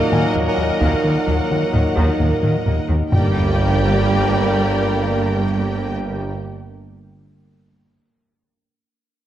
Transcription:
Already playing: A#2 F#3 A#3 D#4 A#4 D#5 F#5
0.11 D#2 D#3 F#3 G#5, taiko low-mid
0.35 D#2 A#3, taiko low-mid
0.58 D#2 D#3
0.80 D#2 D#3 F#3 F#5, taiko
1.03 D#2 D#3 A#3
1.27 D#2 F#3, taiko low-mid
1.50 D#2 D#3 A#3
1.73 D#2 D#3, taiko low-mid
1.96 D#2 D#3, taiko
2.19 D#2 A#3, taiko low-mid
2.42 D#2 D#3 F#3, taiko low-mid
2.65 D#2 A#3, taiko low-mid
2.89 D#2 D#3
3.12 G1 G2 D3 G3 A#3 D4 G4 A#4 D5 G5, taiko low, sub drop

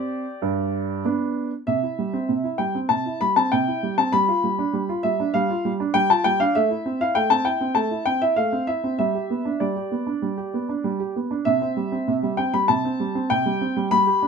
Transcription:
Already playing: C4 G4 D5
0.42 G2
1.05 B3 D4
1.67 C3 E5
1.83 E4
1.99 G3
2.13 C4
2.29 C3
2.44 E4
2.58 G3 G5
2.75 C4
2.89 C3 A5
3.06 E4
3.21 G3 B5
3.36 C4 A5
3.52 C3 G5
3.68 E4
3.83 G3
3.98 C4 A5
4.12 G3 B5
4.28 F4
4.44 G3
4.58 D4
4.73 G3
4.89 F4
5.03 G3 E5
5.20 D4
5.34 G3 F5
5.50 F4
5.65 G3
5.80 D4
5.94 G3 G5
6.10 F4 A5
6.24 G3 G5
6.40 D4 F5
6.55 A3 E5
6.70 E4
6.86 C4
7.01 E4 F5
7.15 A3 G5
7.30 C4 A5
7.45 E4 G5
7.61 C4
7.75 A3 A5
7.91 E4
8.06 C4 G5
8.22 E4 E5
8.36 A3 F5
8.53 C4
8.67 E4 E5
8.84 C4
8.98 G3 E5
9.15 G4
9.30 B3
9.45 D4
9.60 G3 D5
9.76 G4
9.91 B3
10.07 D4
10.22 G3
10.37 G4
10.54 B3
10.69 D4
10.84 G3
11.00 G4
11.16 B3
11.31 D4
11.45 C3 E5
11.61 C4
11.77 G3
11.92 C4
12.08 C3
12.23 G3
12.37 C4 G5
12.54 G3 B5
12.68 C3 A5
12.85 C4
13.00 G3
13.15 C4
13.30 C3 G5
13.46 G3
13.61 C4
13.77 G3
13.91 G3 B5
14.07 G4
14.22 D4

